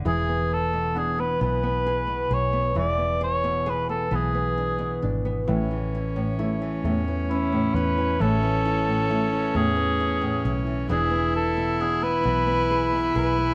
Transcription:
<<
  \new Staff \with { instrumentName = "Cor anglais" } { \time 6/8 \key a \major \tempo 4. = 44 gis'8 a'8 gis'16 b'16 b'4 cis''8 | d''8 cis''8 b'16 a'16 gis'4 r8 | r2 e'8 b'8 | a'4. gis'4 r8 |
gis'8 a'8 gis'16 b'4~ b'16 b'8 | }
  \new Staff \with { instrumentName = "Viola" } { \time 6/8 \key a \major r2. | r2. | cis'2.~ | cis'2. |
e'2. | }
  \new Staff \with { instrumentName = "Nylon-string guitar" } { \time 6/8 \key a \major << { r4 d'4 gis'8 gis'8 | r8 gis'8 gis'4 d'8 d'8 | r8 e'8 e'4 cis'8 e'8 | r8 e'8 e'4 e'8 e'8 |
<b d'>4 d'4 gis'8 gis'8 | } \\ { e16 b8 b,8 b16 e16 b8 b,8 b16 | e16 b8 b,8 b16 e16 b8 b,8 b16 | a,16 e8 a,8 e16 a,16 e8 a,8 e16 | a,16 e8 a,8 e16 a,16 e8 a,8 e16 |
e16 b8 b,8 b16 e16 b8 b,8 b16 | } >> }
  \new Staff \with { instrumentName = "Harp" } { \time 6/8 \key a \major e4 b8 b4. | e4 b8 b4. | e4 a8 a4. | e4 a8 a4. |
e4 b8 b4. | }
  \new Staff \with { instrumentName = "Fingered electric bass" } { \clef bass \time 6/8 \key a \major e,,4. b,,4 b,,8 | e,,4. b,,4 gis,,8 | a,,4. e,4 e,8 | a,,4. e,4 b,,8 |
e,,4. b,,4 b,,8 | }
>>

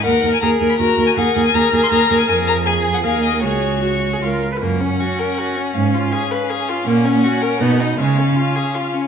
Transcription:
<<
  \new Staff \with { instrumentName = "Violin" } { \time 3/4 \key fis \major \tempo 4 = 160 fis''8. gis''16 ais''8. b''16 ais''8. gis''16 | fis''8. gis''16 ais''8. bis''16 ais''8. gis''16 | gis''8 ais''8 gis''8. fis''16 eis''8 dis''8 | cis''2 r4 |
fis''2. | eis''2. | fis''2. | eis''2~ eis''8 r8 | }
  \new Staff \with { instrumentName = "Viola" } { \time 3/4 \key fis \major ais'4 gis'4 fis'4 | ais'2.~ | ais'4 gis'4 ais'4 | gis'4 fis'8. gis'16 ais'8. b'16 |
cis'2.~ | cis'2. | cis'2 dis'4 | cis'2~ cis'8 r8 | }
  \new Staff \with { instrumentName = "Violin" } { \time 3/4 \key fis \major ais'8 ais'8 ais'8 ais'8 ais'8 ais'8 | gis'8 gis'8 gis'8 gis'8 gis'8 gis'8 | gis'4 gis'4 gis'4 | fis'2 eis'8 r8 |
ais8 cis'8 fis'8 ais'8 fis'8 cis'8 | cis'8 eis'8 gis'8 b'8 gis'8 eis'8 | ais8 cis'8 fis'8 ais'8 b8 dis'8 | gis8 cis'8 eis'8 gis'8 eis'8 cis'8 | }
  \new Staff \with { instrumentName = "Cello" } { \clef bass \time 3/4 \key fis \major dis,8 dis,8 dis,8 dis,8 dis,8 dis,8 | dis,8 dis,8 dis,8 dis,8 dis,8 dis,8 | eis,2 dis,4 | cis,2 cis,8 r8 |
fis,4 r2 | gis,4 r2 | ais,4 r4 b,4 | cis4 r2 | }
>>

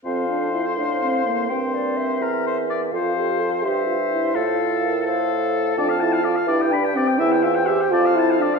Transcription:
<<
  \new Staff \with { instrumentName = "Flute" } { \time 6/8 \key f \major \tempo 4. = 84 f''4. f''4. | g''8 d''8 e''2 | f''4. e''4. | f''4. f''4. |
\key d \dorian a''4. g''4.~ | g''4. a''4. | }
  \new Staff \with { instrumentName = "Oboe" } { \time 6/8 \key f \major c''2. | c''4. bes'8 c''8 d''8 | c''4. c''4. | a'4. a'4. |
\key d \dorian d''16 f''16 a''16 f''16 d''16 f''16 d''16 g''16 b''16 g''16 d''16 g''16 | e''16 g''16 e''16 g''16 e''16 g''16 d''16 f''16 a''16 f''16 d''16 f''16 | }
  \new Staff \with { instrumentName = "Clarinet" } { \time 6/8 \key f \major a'4. c''4. | bes'2. | a'4. c''4. | c''8 a'8 bes'8 c''4. |
\key d \dorian a'4. b'4. | c''2. | }
  \new Staff \with { instrumentName = "French horn" } { \time 6/8 \key f \major c'8 d'8 e'8 d'8 c'8 bes8 | c'2~ c'8 r8 | f'8 g'8 a'8 g'8 f'8 e'8 | f'2~ f'8 r8 |
\key d \dorian d'8 e'8 f'8 e'8 d'8 c'8 | e'8 f'8 g'8 f'8 e'8 d'8 | }
  \new Staff \with { instrumentName = "Bassoon" } { \clef bass \time 6/8 \key f \major f,4. a,4. | g,4. e,4. | f,4. g,4. | a,2. |
\key d \dorian f,4. g,4. | e,4. f,4. | }
>>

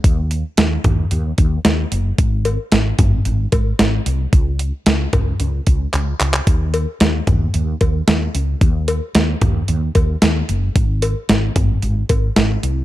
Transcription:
<<
  \new Staff \with { instrumentName = "Fretless electric bass" } { \clef bass \time 4/4 \key ees \dorian \tempo 4 = 112 ees,4 ees,8 ees,8 ees,8 ees,8 ees,8 ges,,8 | aes,,4 aes,,8 aes,,8 aes,,8 aes,,8 aes,,8 c,8 | des,4 des,8 des,8 des,8 des,8 des,8 des,8 | ees,4 ees,8 ees,8 ees,8 ees,8 ees,8 des,8 |
ees,4 ees,8 ees,8 ees,8 ees,8 ees,8 ges,,8 | aes,,4 aes,,8 aes,,8 aes,,8 aes,,8 aes,,8 c,8 | }
  \new DrumStaff \with { instrumentName = "Drums" } \drummode { \time 4/4 <hh bd>8 hh8 <hh sn>8 <hh bd toml>8 hh8 <hh bd>8 <hh sn>8 hh8 | <hh bd>8 <cb hh>8 <hh sn>8 <hh bd toml>8 hh8 <cb hh bd>8 <hh sn>8 hh8 | <hh bd>8 hh8 <hh sn>8 <cb hh bd toml>8 hh8 <hh bd>8 <hc hh>8 <hc hh>16 hc16 | <hh bd>8 <cb hh>8 <hh sn>8 <hh bd toml>8 hh8 <cb hh bd>8 <hh sn>8 hh8 |
<hh bd>8 <cb hh>8 <hh sn>8 <hh bd toml>8 hh8 <cb hh bd>8 <hh sn>8 hh8 | <hh bd>8 <cb hh>8 <hh sn>8 <hh bd toml>8 hh8 <cb hh bd>8 <hh sn>8 hh8 | }
>>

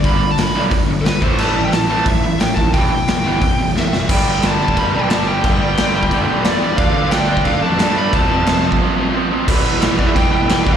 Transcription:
<<
  \new Staff \with { instrumentName = "Lead electric guitar" } { \time 4/4 \key g \mixolydian \tempo 4 = 178 b''8. a''16 b''8. r4 r32 a'32 b'8 c''8 | a''8. g''16 a''4 e''4 g''8 a''8 | g''2. e''4 | g''8 g''8 a''4 b''8 g''8 a''8 g''8~ |
g''2. d''4 | f''8 f''8 g''4 f''8 a''4 b''8 | a''2 r2 | r4. d''16 e''16 g''8 g''4~ g''16 f''16 | }
  \new Staff \with { instrumentName = "Distorted electric guitar" } { \clef bass \time 4/4 \key g \mixolydian <g, d g>8 <g, d>8 <g, d>8 <g, d g>8 <g, d>8 <g, d>8 <g, d>8 <a, e a>8 | <a, e a>8 <a, e>8 <a, e>8 <a, e a>8 <a, e>8 <a, e>8 <a, e>8 <a, e>8 | <e, b, e>8 <e, b,>8 <e, b,>8 <e, b, e>8 <e, b,>8 <e, b,>8 <e, b,>8 <e, b,>8 | <g, d g>8 <g, d g>8 <g, d g>8 <g, d g>8 <g, d g>8 <g, d g>8 <g, d g>8 <g, d g>8 |
<g, d g>8 <g, d g>8 <g, d g>8 <g, d g>8 <g, d g>8 <g, d g>8 <g, d g>8 <g, d g>8 | <d a d'>8 <d a d'>8 <d a d'>8 <d a d'>8 <d a d'>8 <d a d'>8 <d a d'>8 <d a d'>8 | <f, c f>8 <f, c f>8 <f, c f>8 <f, c f>8 <f, c f>8 <f, c f>8 <f, c f>8 <f, c f>8 | <e, b, e>4 <e, b, e>8 <e, b, e>8 <e, b, e>4 <e, b, e>8 <e, b, e>8 | }
  \new Staff \with { instrumentName = "Overdriven electric guitar" } { \clef bass \time 4/4 \key g \mixolydian <g, d g>8 <g, d>8 <g, d>8 <g, d g>8 <g, d>8 <g, d>8 <g, d>8 <a, e a>8 | <a, e a>8 <a, e>8 <a, e>8 <a, e a>8 <a, e>8 <a, e>8 <a, e>8 <a, e>8 | <e, b, e>8 <e, b,>8 <e, b,>8 <e, b, e>8 <e, b,>8 <e, b,>8 <e, b,>8 <e, b,>8 | <g, d g>8 <g, d g>8 <g, d g>8 <g, d g>8 <g, d g>8 <g, d g>8 <g, d g>8 <g, d g>8 |
<g, d g>8 <g, d g>8 <g, d g>8 <g, d g>8 <g, d g>8 <g, d g>8 <g, d g>8 <g, d g>8 | <d a d'>8 <d a d'>8 <d a d'>8 <d a d'>8 <d a d'>8 <d a d'>8 <d a d'>8 <d a d'>8 | <f, c f>8 <f, c f>8 <f, c f>8 <f, c f>8 <f, c f>8 <f, c f>8 <f, c f>8 <f, c f>8 | <e, b, e>4 <e, b, e>8 <e, b, e>8 <e, b, e>4 <e, b, e>8 <e, b, e>8 | }
  \new Staff \with { instrumentName = "Picked electric bass" } { \clef bass \time 4/4 \key g \mixolydian g,,4 g,,8 b,,8 g,,8 g,,8 g,,8 a,,8 | a,,8 a,,8 a,,8 a,,8 a,,4 a,,8 dis,8 | e,,4 e,,8 g,,8 e,,8 e,,8 e,8 fis,,8 | g,,4 g,,4 g,,8 b,,8 g,,4 |
g,,4 g,,4 g,,8 b,,8 e,4 | d,4 d,4 d,8 f,8 g,4 | f,,4 f,,4 r2 | e,,8 e,,8 e,,8 e,8 e,,8 e,,8 e,,8 e,,8 | }
  \new DrumStaff \with { instrumentName = "Drums" } \drummode { \time 4/4 <hho bd>4 <hho sn>4 <hho bd>4 <hho sn>8 bd8 | cymc4 <hho sn>4 <hho bd>4 <hho sn>8 bd8 | <hho bd>4 <hho sn>4 <hho bd>4 sn8 sn8 | <cymc bd>4 <cymc sn>8. bd16 <cymc bd>4 <cymc sn>4 |
<cymc bd>4 <cymc sn>8. bd16 <cymc bd>4 <cymc sn>4 | <cymc bd>4 <cymc sn>8. bd16 <cymc bd>4 <cymc sn>4 | <cymc bd>4 <cymc sn>8. bd16 r4 r4 | <cymc bd>4 <cymc sn>8 bd8 <cymc bd>4 <cymc sn>8 bd8 | }
>>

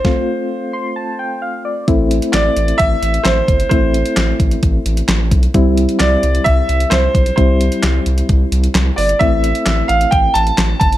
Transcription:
<<
  \new Staff \with { instrumentName = "Grand piano" } { \time 4/4 \key f \major \tempo 4 = 131 c''2. r4 | \key a \minor r4 d''4 e''4 c''4 | c''4. r2 r8 | r4 d''4 e''4 c''4 |
c''4. r2 d''8 | e''4. f''8 g''8 a''4 a''8 | }
  \new Staff \with { instrumentName = "Synth keys" } { \time 4/4 \key f \major << { r4. c'''8 a''8 g''8 f''8 d''8 | \key a \minor r1 | r1 | r1 |
r1 | r1 | } \\ { <a c' f'>1 | <a c' e'>1 | <a c' e'>1 | <g c' e'>1 |
<g c' e'>1 | <a c' e'>1 | } >> }
  \new Staff \with { instrumentName = "Analog synth bass" } { \clef bass \time 4/4 \key f \major r1 | \key a \minor a,,4 a,,8 a,,8 a,,8 a,,8 a,,8 g,,8 | a,,4 a,,8 a,,8 a,,8 a,,8 a,,8 b,,8 | c,4 c,8 c,8 c,8 c,8 c,8 b,,8 |
c,4 c,8 c,8 c,8 c,8 c,8 g,,8 | a,,4 a,,8 a,,8 a,,8 a,,8 a,,8 g,,8 | }
  \new DrumStaff \with { instrumentName = "Drums" } \drummode { \time 4/4 <bd sn>4 r4 r4 r4 | <hh bd>8 hh16 hh16 <hc hh sn>8 hh16 hh16 <hh bd>8 hh16 hh16 <hc hh sn>8 <hh bd>16 hh16 | <hh bd>8 hh16 hh16 <hc hh sn>8 <hh bd>16 hh16 <hh bd>8 hh16 hh16 <hc hh sn>8 <hh bd>16 hh16 | <hh bd>8 hh16 hh16 <hc hh sn>8 hh16 hh16 <hh bd>8 hh16 hh16 <hc hh sn>8 <hh bd>16 hh16 |
<hh bd>8 hh16 hh16 <hc hh sn>8 hh16 hh16 <hh bd>8 hh16 hh16 <hc hh sn>8 hho16 hh16 | <hh bd>8 hh16 hh16 <hc hh sn>8 hh16 hh16 <hh bd>8 hh16 hh16 <hc hh sn>8 <hh bd>16 hh16 | }
>>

